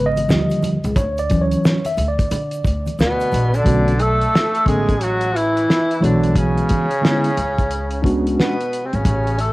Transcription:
Already playing: upright bass G#1, tine electric piano C#3 G#3 B3
0.06 tine electric piano D#5
0.16 closed hi-hat, high conga, shaker
0.28 upright bass D#2, tine electric piano D3 F3 G3, snare, shaker
0.50 closed hi-hat, shaker
0.63 closed hi-hat, high conga, low conga, shaker
0.84 upright bass C#2, closed hi-hat, shaker
0.96 upright bass D2, tine electric piano C#5, kick, closed hi-hat, shaker
1.18 tine electric piano D5, closed hi-hat, shaker
1.30 tine electric piano E3 F#3 C#4, kick, closed hi-hat, high conga, shaker
1.41 tine electric piano C#5
1.51 closed hi-hat, shaker
1.64 snare, high conga, shaker
1.85 tine electric piano E5, closed hi-hat, high conga, shaker
1.97 upright bass D2, closed hi-hat, low conga, shaker
2.08 tine electric piano D5
2.19 kick, closed hi-hat, shaker
2.31 upright bass D3, closed hi-hat, shaker
2.51 closed hi-hat, shaker
2.64 upright bass D2, kick, closed hi-hat, shaker
2.86 closed hi-hat, high conga, shaker
2.99 upright bass D2, trombone B2, alto saxophone B3, snare, shaker
3.20 closed hi-hat, shaker
3.32 upright bass A#1, closed hi-hat, high conga, low conga, shaker
3.54 trombone D3, alto saxophone D4, closed hi-hat, shaker
3.64 upright bass B1, tine electric piano D3 A3 B3 C#4 F#4, kick, closed hi-hat
3.88 closed hi-hat
3.99 trombone A3, alto saxophone A4, closed hi-hat
4.21 closed hi-hat
4.35 snare
4.55 closed hi-hat
4.65 upright bass A1, tine electric piano D3 A3 B3 C#4 A4, trombone G#3, alto saxophone G#4, kick, closed hi-hat
4.89 kick, closed hi-hat
5.01 trombone F#3, alto saxophone F#4, closed hi-hat
5.21 closed hi-hat
5.36 trombone E3, alto saxophone E4, closed hi-hat
5.57 closed hi-hat
5.70 snare
5.91 closed hi-hat
6.01 upright bass B1, trombone D3, tine electric piano E3 G#3 B3 F#4 C#5, alto saxophone D4, closed hi-hat
6.24 closed hi-hat
6.36 trombone C#3, alto saxophone C#4, kick, closed hi-hat
6.57 closed hi-hat
6.69 kick, closed hi-hat
6.91 closed hi-hat
7.02 tine electric piano D3 G#3 B3 C#4 E4, snare
7.24 closed hi-hat
7.37 upright bass C#2, closed hi-hat
7.59 kick, closed hi-hat
7.71 closed hi-hat
7.91 closed hi-hat
8.02 tine electric piano G#3 B3 C#4 D4 F#4, kick, closed hi-hat
8.27 closed hi-hat
8.38 trombone B2, alto saxophone B3, snare
8.61 closed hi-hat
8.73 closed hi-hat
8.84 trombone C3, alto saxophone C4
8.93 upright bass G#1, trombone C#3, alto saxophone C#4, closed hi-hat
9.05 upright bass A1, kick, closed hi-hat
9.27 closed hi-hat
9.38 trombone A3, alto saxophone A4, closed hi-hat

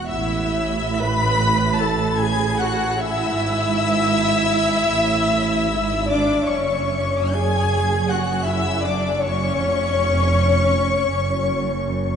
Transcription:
0.08 double bass section A1, cello section A2, viola section E4, violin section E5 E6
0.96 viola section B4, violin section B5 B6
1.78 viola section A4, violin section A5 A6
2.16 viola section G#4, violin section G#5 G#6
2.58 viola section F#4, violin section F#5 F#6
2.97 viola section E4, violin section E5 E6
3.36 double bass section G#1, cello section G#2
4.91 double bass section A1, cello section A2
5.69 double bass section G#1, cello section G#2
6.07 viola section D4, violin section D5 D6
6.47 double bass section F#1, cello section F#2, viola section C#4, violin section C#5 C#6
7.30 viola section G#4, violin section G#5 G#6
8.09 viola section F#4, violin section F#5 F#6
8.45 viola section E4, violin section E5 E6
8.83 viola section D4, violin section D5 D6
9.20 violin section C#5 C#6
9.24 viola section C#4
9.60 double bass section F1, cello section F2
11.11 double bass section F#1, cello section F#2

